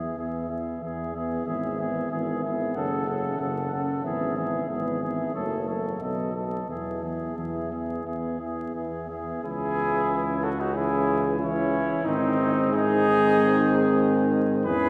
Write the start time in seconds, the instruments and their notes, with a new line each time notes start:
Already playing: trombone E3, french horn B3, trumpet G#4 E5
0.17 tuba E2, trombone E3, french horn B3, trumpet G#4 E5
0.50 trombone E3, french horn B3, trumpet G#4 E5
0.82 tuba E2, trombone E3, french horn B3, trumpet G#4 E5
1.14 trombone E3, french horn B3, trumpet G#4 E5
1.45 tuba G#1, trombone E3, french horn B3, trumpet G#4 E5
1.78 trombone E3, french horn B3, trumpet G#4 E5
2.10 tuba G#1, trombone E3, french horn B3, trumpet G#4 E5
2.42 trombone E3, french horn B3, trumpet G#4 E5
2.75 tuba F#1, trombone C#3, french horn C#4, trumpet A4 F#5
3.06 trombone C#3, french horn C#4, trumpet A4 F#5
3.38 tuba F#1, trombone C#3, french horn C#4, trumpet A4 F#5
3.71 trombone C#3, french horn C#4, trumpet A4 F#5
4.03 tuba G#1, trombone E3, french horn B3, trumpet G#4 E5
4.36 trombone E3, french horn B3, trumpet G#4 E5
4.68 tuba G#1, trombone E3, french horn B3, trumpet G#4 E5
5.01 trombone E3, french horn B3, trumpet G#4 E5
5.34 tuba F#1, trombone F#3, french horn A3, trumpet A4 C#5
5.66 trombone F#3, french horn A3, trumpet A4 C#5
6.00 tuba B1, trombone F#3, french horn B3, trumpet A4 D#5
6.35 trombone F#3, french horn B3, trumpet A4 D#5
6.68 tuba E2, trombone E3, french horn B3, trumpet G#4 E5
7.03 trombone E3, french horn B3, trumpet G#4 E5
7.36 tuba E2, trombone E3, french horn B3, trumpet G#4 E5
7.72 trombone E3, french horn B3, trumpet G#4 E5
8.05 tuba E2, trombone E3, french horn B3, trumpet G#4 E5
8.40 trombone E3, french horn B3, trumpet G#4 E5
8.74 tuba E2, trombone E3, french horn B3, trumpet G#4 E5
9.09 trombone E3, french horn B3, trumpet G#4 E5
9.43 tuba C#2, trombone E3, french horn C#4, trumpet E4 G#4
10.42 trumpet F#4 A4
10.60 trumpet D#4 F#4
10.74 trombone E3, french horn C#4, trumpet E4 G#4
11.39 trombone E3, french horn C#4, trumpet C#4 E4
12.05 tuba G#2, trombone D#3, french horn C4, trumpet C4 D#4
12.72 trombone D#3, french horn C4, trumpet D#4 G#4
14.66 tuba E2, trombone E3, french horn C#4, trumpet G#4 B4